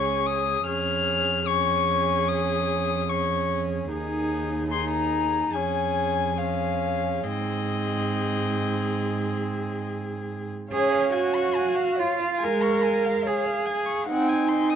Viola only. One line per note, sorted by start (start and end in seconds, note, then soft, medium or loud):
0.00 0.62 C#4 medium
0.66 1.45 C#4 medium
1.48 3.07 C#4 medium
3.10 3.90 C#4 medium
3.91 4.69 D#4 medium
4.72 5.56 D#4 medium
5.55 6.37 C#4 medium
6.38 7.25 C#4 medium
7.24 10.52 C4 medium
10.71 11.41 C#4 medium
12.43 13.13 G#3 medium
14.10 14.76 C4 medium